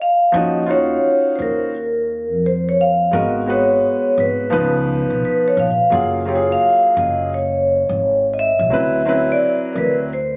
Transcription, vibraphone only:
0.02 0.36 F5 medium
0.36 0.71 D#5 medium
0.71 1.31 C#5 medium
1.35 1.40 C5 medium
1.42 2.48 A#4 medium
2.46 2.68 C5 medium
2.69 2.74 C#5 medium
2.81 3.12 F5 medium
3.15 3.31 D#5 medium
3.50 4.21 C#5 medium
4.20 5.24 B4 medium
5.25 5.47 B4 medium
5.48 5.58 C#5 medium
5.60 5.91 F5 medium
5.95 6.10 F#5 medium
6.29 6.39 C#5 medium
6.52 6.99 F5 loud
6.99 7.34 D#5 medium
7.34 8.36 C#5 medium
8.34 8.37 D#5 medium
8.39 9.33 E5 medium
9.32 9.74 D5 medium
9.73 9.77 A#4 medium
9.78 9.93 B4 medium
10.13 10.37 C5 medium

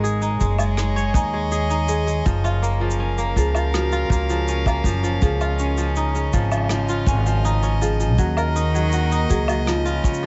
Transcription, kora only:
0.00 0.39 G#3 medium
0.00 0.21 D#4 medium
0.00 1.40 G#4 medium
0.00 0.63 C#5 medium
0.22 1.14 D#4 medium
0.41 0.58 G#3 medium
0.59 0.76 G#3 medium
0.77 1.32 G#3 medium
0.96 2.11 C#5 loud
1.15 1.70 D#4 medium
1.33 1.87 G#3 medium
1.52 2.88 G#4 medium
1.70 3.32 D#4 medium
1.88 2.06 G#3 medium
2.07 2.31 G#3 medium
2.26 2.80 F3 medium
2.44 3.92 F4 loud
2.62 3.18 A#3 medium
2.81 3.35 F3 medium
3.00 4.48 C#4 medium
3.18 4.11 A#3 medium
3.37 3.54 F3 medium
3.55 3.73 F3 medium
3.74 4.29 F3 medium
3.92 5.40 F4 loud
4.12 4.67 A#3 medium
4.30 4.85 F3 medium
4.49 5.59 C#4 medium
4.68 6.60 A#3 medium
4.86 5.02 F3 medium
5.04 5.21 F3 medium
5.22 5.77 F3 medium
5.41 6.89 F4 loud
5.60 6.15 C#4 medium
5.78 6.32 F3 medium
5.97 7.44 D#4 medium
6.15 7.07 C#4 medium
6.33 6.51 F3 medium
6.52 6.69 F3 medium
6.70 7.25 F3 medium
6.89 8.24 F4 loud
7.08 7.63 C#4 medium
7.26 7.80 F3 medium
7.45 8.55 D#4 medium
7.63 9.37 C#4 medium
7.82 7.99 F3 medium
8.00 8.23 F3 medium
8.18 8.73 F#3 medium
8.37 9.65 A#4 loud
8.56 9.11 D#4 medium
8.75 9.29 F#3 medium
8.93 9.73 F#4 medium
9.12 10.26 D#4 medium
9.30 9.48 F#3 medium
9.49 9.72 F#3 medium
9.67 10.22 F3 medium
9.85 10.26 F4 loud
10.04 10.26 C#4 medium
10.23 10.26 F3 medium

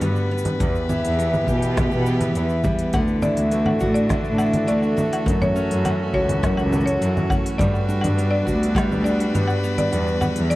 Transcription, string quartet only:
0.00 0.60 D3 medium
0.00 0.60 G3 medium
0.00 0.60 F#4 medium
0.00 3.64 B4 medium
0.59 7.59 E3 medium
0.63 3.86 B3 medium
0.78 2.93 G4 medium
3.09 5.26 D4 medium
3.32 10.55 F#4 medium
3.42 8.52 A4 medium
5.30 7.59 C#4 medium
7.61 10.55 G3 medium
7.61 10.55 D4 medium
7.68 10.55 B4 medium
10.16 10.55 B3 medium
10.31 10.55 E4 medium

